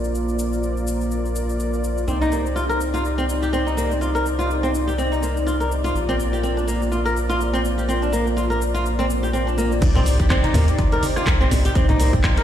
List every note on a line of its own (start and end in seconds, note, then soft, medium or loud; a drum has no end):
0.00 2.06 A#1 medium
0.00 2.04 A#3 medium
0.00 2.04 F4 medium
0.00 2.05 F4 medium
0.00 2.05 A#4 medium
0.00 2.04 C5 medium
0.00 2.04 D5 medium
0.00 2.05 D5 medium
0.04 cabasa soft
0.15 cabasa soft
0.29 cabasa soft
0.39 cabasa medium
0.53 cabasa soft
0.63 cabasa soft
0.77 cabasa soft
0.87 cabasa medium
1.01 cabasa soft
1.11 cabasa soft
1.25 cabasa soft
1.36 cabasa medium
1.49 cabasa soft
1.60 cabasa soft
1.73 cabasa soft
1.84 cabasa medium
1.98 cabasa soft
2.07 5.93 C2 medium
2.07 2.21 C4 medium
2.07 5.91 C4 medium
2.07 5.92 D#4 medium
2.07 5.91 D#4 medium
2.07 5.91 G4 medium
2.07 5.92 C5 medium
2.07 5.92 D5 medium
2.07 9.78 D5 medium
2.07 cabasa soft
2.21 2.31 D#4 medium
2.21 cabasa soft
2.32 2.44 A#3 medium
2.32 cabasa medium
2.46 cabasa soft
2.56 2.63 F4 medium
2.56 cabasa soft
2.69 2.80 A#4 medium
2.69 cabasa soft
2.81 cabasa medium
2.94 3.03 F4 medium
2.94 cabasa soft
3.05 cabasa soft
3.18 3.24 C4 medium
3.18 cabasa soft
3.30 cabasa medium
3.42 3.48 G4 medium
3.42 cabasa soft
3.53 3.66 C4 medium
3.53 cabasa soft
3.67 3.76 D#4 medium
3.67 cabasa soft
3.77 3.89 A#3 medium
3.77 cabasa medium
3.91 cabasa soft
4.01 4.09 F4 medium
4.01 cabasa soft
4.15 4.25 A#4 medium
4.15 cabasa soft
4.26 cabasa medium
4.39 4.48 F4 medium
4.39 cabasa soft
4.51 cabasa soft
4.63 4.69 C4 medium
4.63 cabasa soft
4.75 cabasa medium
4.87 4.93 G4 medium
4.87 cabasa soft
4.98 5.11 C4 medium
4.98 cabasa soft
5.12 5.21 D#4 medium
5.12 cabasa soft
5.22 5.35 A#3 medium
5.22 cabasa medium
5.37 cabasa soft
5.47 5.54 F4 medium
5.47 cabasa soft
5.60 5.70 A#4 medium
5.60 cabasa soft
5.72 cabasa medium
5.84 5.94 F4 medium
5.84 cabasa soft
5.95 9.80 A#1 medium
5.95 9.78 A#3 medium
5.95 9.78 F4 medium
5.95 9.79 F4 medium
5.95 9.79 A#4 medium
5.95 9.78 C5 medium
5.95 9.79 D5 medium
5.95 cabasa soft
6.09 6.14 C4 medium
6.09 cabasa soft
6.20 cabasa medium
6.33 6.38 G4 medium
6.33 cabasa soft
6.43 6.56 C4 medium
6.43 cabasa soft
6.57 6.66 D4 medium
6.57 cabasa soft
6.68 6.80 A#3 medium
6.68 cabasa medium
6.82 cabasa soft
6.92 6.99 F4 medium
6.92 cabasa soft
7.05 7.15 A#4 medium
7.05 cabasa soft
7.17 cabasa medium
7.29 7.39 F4 loud
7.29 cabasa soft
7.41 cabasa soft
7.53 7.59 C4 medium
7.53 cabasa soft
7.65 cabasa medium
7.78 7.84 G4 medium
7.78 cabasa soft
7.89 8.01 C4 medium
7.89 cabasa soft
8.02 8.12 D4 medium
8.02 cabasa soft
8.12 8.25 A#3 medium
8.12 cabasa medium
8.27 cabasa soft
8.37 8.44 F4 medium
8.37 cabasa soft
8.50 8.60 A#4 medium
8.50 cabasa soft
8.62 cabasa medium
8.74 8.84 F4 medium
8.74 cabasa soft
8.86 cabasa soft
8.99 9.04 C4 medium
8.99 cabasa soft
9.10 cabasa medium
9.23 9.29 G4 medium
9.23 cabasa soft
9.33 9.46 C4 medium
9.33 cabasa soft
9.47 9.57 D4 medium
9.47 cabasa soft
9.58 9.70 A#3 medium
9.58 cabasa medium
9.72 cabasa soft
9.81 10.48 C2 loud
9.81 12.43 C4 medium
9.81 12.43 D#4 medium
9.81 11.24 D#4 medium
9.81 12.43 G4 medium
9.81 11.25 C5 medium
9.81 11.73 D5 medium
9.81 11.25 D5 medium
9.81 kick loud
9.81 closed hi-hat medium
9.81 crash loud
9.81 high conga medium
9.81 cabasa medium
9.95 10.01 C4 loud
9.95 closed hi-hat soft
9.95 low conga loud
9.95 cabasa soft
10.06 open hi-hat medium
10.06 muted conga medium
10.06 cabasa medium
10.20 10.25 G4 medium
10.20 kick medium
10.20 closed hi-hat soft
10.20 cabasa soft
10.30 10.43 C4 loud
10.30 kick loud
10.30 cross-stick loud
10.30 clap loud
10.30 closed hi-hat medium
10.30 cabasa medium
10.44 10.53 D#4 medium
10.44 closed hi-hat soft
10.44 muted conga soft
10.44 high conga medium
10.44 cabasa soft
10.54 10.71 D#2 medium
10.54 10.67 A#3 medium
10.54 open hi-hat medium
10.54 high conga loud
10.54 low conga loud
10.54 cabasa medium
10.68 closed hi-hat soft
10.68 cabasa soft
10.78 10.87 G1 loud
10.78 10.86 F4 medium
10.78 kick loud
10.78 closed hi-hat medium
10.78 muted conga medium
10.78 high conga medium
10.78 cabasa soft
10.92 11.02 A#4 medium
10.92 closed hi-hat soft
10.92 cabasa soft
11.03 open hi-hat medium
11.03 high conga medium
11.03 cabasa medium
11.16 11.26 F4 loud
11.16 cross-stick medium
11.16 cabasa soft
11.26 11.69 C2 medium
11.26 kick loud
11.26 cross-stick loud
11.26 clap loud
11.26 closed hi-hat medium
11.26 muted conga soft
11.26 high conga loud
11.26 cabasa medium
11.41 11.46 C4 medium
11.41 cabasa soft
11.51 open hi-hat medium
11.51 low conga loud
11.51 cabasa medium
11.65 11.71 G4 medium
11.65 closed hi-hat soft
11.65 muted conga medium
11.65 cabasa soft
11.75 12.42 C2 loud
11.75 11.89 C4 loud
11.75 12.43 D#4 medium
11.75 12.43 C5 medium
11.75 12.43 D5 medium
11.75 kick loud
11.75 closed hi-hat medium
11.75 cabasa medium
11.89 11.99 D#4 medium
11.89 closed hi-hat soft
11.89 low conga loud
11.89 cabasa soft
12.00 12.12 A#3 medium
12.00 open hi-hat medium
12.00 muted conga soft
12.00 cabasa loud
12.13 kick medium
12.13 closed hi-hat soft
12.13 low conga medium
12.13 cabasa soft
12.24 12.31 F4 medium
12.24 kick loud
12.24 cross-stick loud
12.24 clap loud
12.24 closed hi-hat medium
12.24 cabasa medium
12.36 12.43 A#4 medium
12.36 closed hi-hat soft
12.36 muted conga soft
12.36 cabasa soft